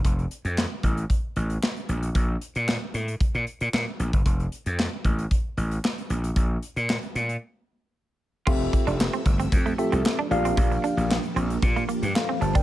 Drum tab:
CC |----------------|----------------|----------------|----------------|
HH |xxxx--xxx-xx-xxx|x-xx--xxxxxx--xx|xxxx--xxx-xx-xxx|x-xx-xxx--------|
CP |----x-------x---|----x-------x---|----x-------x---|----x-----------|
SD |----o-------o---|----o-------o---|----o-------o---|----o-----------|
BD |o-----o-o-------|o-------o------o|o-----o-o-------|o---------------|

CC |x---------------|----------------|
HH |--xx-xxxxxxx--xx|xxxx-xxxxxxx--xx|
CP |----x-------x---|----x-------x---|
SD |----o-------o---|----o-------o---|
BD |o-o---o-o-------|o-------o------o|